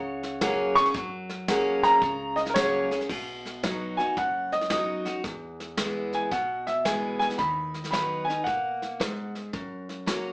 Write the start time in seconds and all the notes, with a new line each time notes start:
Already playing: C#2 C#3 C#5 F#5
0.23 snare
0.41 F#3 A#3 C#4 G#4 A#4 F#5, kick, snare, hi-hat pedal
0.75 C#4 G#4 C#6, snare
0.85 snare
0.94 F#2 F#3, kick, snare
1.29 snare
1.48 F#3 A#3 C#4 G#4 A#4 F#5, kick, snare, hi-hat pedal
1.83 A#5, snare
2.02 C#2 C#3, kick, snare
2.36 D#5, snare
2.46 A#4, snare
2.54 F#3 A#3 C#4 G#4 A#4 C#5 F#5, kick, snare, hi-hat pedal
2.91 C#4 G#4, snare
3.01 snare
3.09 B1 B2, kick, snare, crash
3.45 snare
3.63 F#3 B3 D#4 F#4, kick, snare, hi-hat pedal
3.97 D#4 F#4 G#5, snare
4.17 F#1 F#2 F#5, kick, snare
4.52 D#5, snare
4.61 snare
4.70 F#3 B3 D#4 F#4 D#5, kick, snare, hi-hat pedal
5.05 D#4 F#4, snare
5.24 E2, kick, snare
5.60 snare
5.77 E3 G#3 B3 E4, kick, snare, hi-hat pedal
6.13 G#5, snare
6.31 B1 B2 F#5, kick, snare
6.67 E5, snare
6.85 E3 G#3 B3 E4 G#5, kick, snare, hi-hat pedal
7.19 G#5, snare
7.30 snare
7.38 D#2 D#3 B5, kick, snare
7.74 snare
7.84 snare
7.91 F#3 B3 D#4 B4 B5, kick, snare, hi-hat pedal
8.25 B4 G#5
8.30 D#4, snare
8.44 B2 A#3 F#5, kick, snare
8.82 snare
9.00 G#2, kick, snare, hi-hat pedal
9.35 snare
9.53 F#2, kick, snare
9.89 snare
10.06 F#3 A#3 C#4 F#4, kick, snare, hi-hat pedal